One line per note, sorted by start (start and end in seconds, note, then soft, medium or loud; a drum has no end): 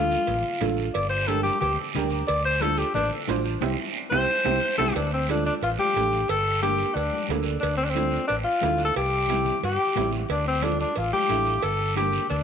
0.00 0.15 D2 loud
0.00 0.17 D4 medium
0.00 0.18 F4 medium
0.00 0.74 F4 loud
0.00 0.18 A4 medium
0.11 high conga medium
0.11 short guiro medium
0.27 0.41 A1 medium
0.27 cowbell medium
0.27 low conga medium
0.27 long guiro medium
0.61 0.88 A1 medium
0.61 0.84 D4 medium
0.61 0.85 F4 medium
0.61 0.85 A4 loud
0.61 cowbell medium
0.61 high conga medium
0.61 low conga medium
0.61 short guiro medium
0.77 short guiro medium
0.94 1.48 G1 loud
0.94 1.09 D5 medium
0.94 cowbell loud
0.94 long guiro medium
1.10 1.29 C5 medium
1.27 1.51 D4 medium
1.27 1.52 G4 medium
1.27 1.43 A4 loud
1.27 1.52 A#4 medium
1.27 cowbell medium
1.27 high conga medium
1.27 short guiro medium
1.43 1.60 G4 medium
1.43 high conga medium
1.43 short guiro medium
1.61 1.75 D2 medium
1.61 1.77 G4 medium
1.61 cowbell medium
1.61 low conga medium
1.61 long guiro medium
1.94 2.22 D2 medium
1.94 2.18 D4 loud
1.94 2.19 G4 medium
1.94 2.19 A#4 loud
1.94 cowbell medium
1.94 high conga medium
1.94 low conga medium
1.94 short guiro medium
2.10 short guiro medium
2.27 2.82 D2 loud
2.27 2.44 D5 medium
2.27 cowbell loud
2.27 long guiro medium
2.45 2.63 C5 medium
2.60 2.85 D4 medium
2.60 2.85 F4 medium
2.60 2.80 A4 medium
2.60 2.85 A4 medium
2.60 cowbell medium
2.60 high conga medium
2.60 short guiro medium
2.77 2.94 G4 medium
2.77 short guiro medium
2.94 3.08 A1 medium
2.94 3.11 D4 loud
2.94 cowbell medium
2.94 low conga medium
2.94 long guiro medium
3.27 3.55 A1 medium
3.27 3.51 D4 medium
3.27 3.51 F4 medium
3.27 3.52 C5 loud
3.27 cowbell medium
3.27 high conga medium
3.27 low timbale medium
3.27 short guiro medium
3.44 short guiro medium
3.61 3.74 C2 loud
3.61 3.72 C4 medium
3.61 3.72 E4 loud
3.61 3.72 G4 medium
3.61 high conga medium
3.61 high timbale loud
3.61 long guiro loud
4.10 4.24 C2 medium
4.10 4.23 C4 medium
4.10 4.23 E4 medium
4.10 4.23 G4 loud
4.10 4.75 C5 loud
4.10 high conga loud
4.10 high timbale loud
4.10 long guiro medium
4.44 4.58 C2 loud
4.44 4.56 C4 loud
4.44 4.56 E4 loud
4.44 4.56 G4 loud
4.44 high conga loud
4.44 high timbale medium
4.44 long guiro loud
4.78 4.91 C2 loud
4.78 4.90 C4 medium
4.78 4.90 E4 loud
4.78 4.90 G4 medium
4.78 4.94 A4 loud
4.78 high conga loud
4.78 high timbale loud
4.78 long guiro loud
4.95 5.49 D2 loud
4.95 5.11 D4 medium
4.95 cowbell loud
4.95 long guiro medium
5.13 5.28 C4 medium
5.29 5.52 A3 medium
5.29 5.52 D4 medium
5.29 5.45 D4 medium
5.29 5.52 F4 medium
5.29 cowbell medium
5.29 high conga medium
5.29 short guiro medium
5.45 5.53 D4 medium
5.45 short guiro medium
5.61 5.75 A1 medium
5.61 5.71 F4 medium
5.61 cowbell medium
5.61 long guiro medium
5.79 6.31 G4 loud
5.79 high conga medium
5.94 6.22 A1 medium
5.94 6.19 A3 medium
5.94 6.19 D4 medium
5.94 6.19 G4 medium
5.94 cowbell medium
5.94 high conga medium
5.94 short guiro medium
6.12 short guiro medium
6.28 6.82 G1 medium
6.28 6.62 A4 medium
6.28 cowbell loud
6.28 long guiro medium
6.61 6.86 A#3 medium
6.61 6.86 D4 medium
6.61 6.96 G4 loud
6.61 6.86 G4 medium
6.61 cowbell medium
6.61 high conga medium
6.61 short guiro medium
6.77 short guiro medium
6.94 7.09 D2 medium
6.94 7.29 D4 medium
6.94 cowbell medium
6.94 long guiro medium
7.13 high conga medium
7.27 7.55 D2 medium
7.27 7.53 A#3 medium
7.27 7.53 D4 medium
7.27 7.53 A4 medium
7.27 cowbell medium
7.27 high conga medium
7.27 low conga medium
7.27 low timbale medium
7.27 short guiro medium
7.43 short guiro medium
7.60 8.16 D2 loud
7.60 7.77 D4 medium
7.60 cowbell loud
7.60 long guiro medium
7.77 7.86 C4 loud
7.84 7.92 D4 medium
7.90 8.27 C4 medium
7.90 short guiro medium
7.95 8.19 A3 medium
7.95 8.19 D4 medium
7.95 8.19 F4 medium
7.95 cowbell medium
7.95 high conga medium
8.11 short guiro medium
8.28 8.43 A1 loud
8.28 8.36 D4 medium
8.28 cowbell medium
8.28 long guiro medium
8.44 8.81 F4 loud
8.61 8.89 D2 medium
8.61 8.85 A3 medium
8.61 8.86 D4 medium
8.61 8.86 E4 medium
8.61 cowbell medium
8.61 high conga medium
8.61 low timbale medium
8.61 short guiro medium
8.78 short guiro medium
8.85 8.95 A4 medium
8.95 9.49 C2 medium
8.95 9.59 G4 loud
8.95 cowbell loud
8.95 long guiro medium
9.28 9.53 G3 medium
9.28 9.53 C4 medium
9.28 9.53 E4 medium
9.28 cowbell medium
9.28 high conga medium
9.28 short guiro medium
9.45 low conga medium
9.45 short guiro medium
9.61 9.76 G2 medium
9.61 10.10 G4 loud
9.61 cowbell medium
9.61 long guiro medium
9.94 10.23 A1 medium
9.94 10.20 G3 medium
9.94 10.20 C4 medium
9.94 10.20 E4 medium
9.94 cowbell medium
9.94 high conga medium
9.94 low conga medium
9.94 low timbale medium
9.94 short guiro medium
10.11 short guiro medium
10.29 10.83 D2 medium
10.29 10.46 D4 medium
10.29 cowbell loud
10.29 long guiro medium
10.48 10.65 C4 medium
10.62 10.86 A3 medium
10.62 10.86 D4 medium
10.62 10.80 D4 medium
10.62 10.87 F4 medium
10.62 cowbell medium
10.62 high conga medium
10.62 short guiro medium
10.79 10.99 D4 medium
10.79 short guiro medium
10.96 11.10 A1 medium
10.96 11.12 F4 medium
10.96 cowbell medium
10.96 long guiro medium
11.13 11.64 G4 loud
11.13 high conga medium
11.29 11.56 A1 medium
11.29 11.53 A3 medium
11.29 11.53 D4 medium
11.29 11.53 E4 medium
11.29 cowbell medium
11.29 high conga medium
11.29 short guiro medium
11.45 short guiro medium
11.62 12.17 G1 loud
11.62 11.96 A4 medium
11.62 cowbell medium
11.62 long guiro medium
11.95 12.20 A#3 medium
11.95 12.20 D4 medium
11.95 12.20 G4 medium
11.95 12.28 G4 medium
11.95 cowbell medium
11.95 high conga medium
11.95 short guiro medium
12.12 low conga medium
12.12 short guiro medium
12.30 12.43 D2 medium
12.30 12.43 D4 medium
12.30 cowbell medium
12.30 long guiro medium